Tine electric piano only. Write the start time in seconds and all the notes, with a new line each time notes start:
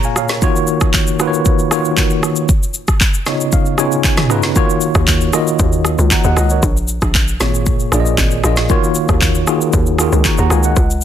Already playing: A#2 A#3 F4 G#4 C#5 A#5 C#6
0.04 F5 G#5
0.17 C#5 F5
0.31 A#4 C#5
0.42 D#3 A#3 F4 F#4 C#5
1.20 D#3 A#3 F4 F#4 B4
1.27 C#5
1.71 D#3 A#3 F4 F#4 C#5
3.27 C#3 B3 D#4 F4 C#5 D#5
3.53 F5
3.78 C#3 B3 D#4 F4 C#5 G#5
4.05 G#5
4.30 C#3 B3 D#4 F4 B4 A#5
4.56 D#3 A#3 F4 F#4 C#5
5.33 D#3 A#3 F4 F#4 D#5
6.12 F#5 A#5
6.25 D#5 F#5
6.38 D#5
6.51 A#4 C#5
7.41 A#2 A#3 F4 G#4 C#5
7.92 A#2 A#3 F4 G#4 D5
8.00 D#5
8.44 A#2 A#3 F4 G#4 D#5
8.70 D#3 A#3 F4 F#4 C#5
9.48 D#3 A#3 F4 F#4 G#4
9.99 D#3 A#3 F4 F#4 G#4
10.26 A#5 C#6
10.39 F#5 A#5
10.52 F5 G#5
10.65 D#5 F#5